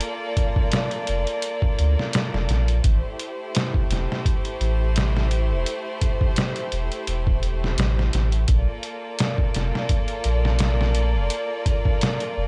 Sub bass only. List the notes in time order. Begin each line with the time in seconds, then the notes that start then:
1.09 F1
1.79 D2
2.34 F1
2.49 A#1
2.84 A1
3.90 E1
4.60 A1
5.51 E1
6.72 E1
7.08 E1
7.78 A1
8.14 A1
8.49 A#1
9.55 F1
10.25 A#1
11.15 F1
12.37 F1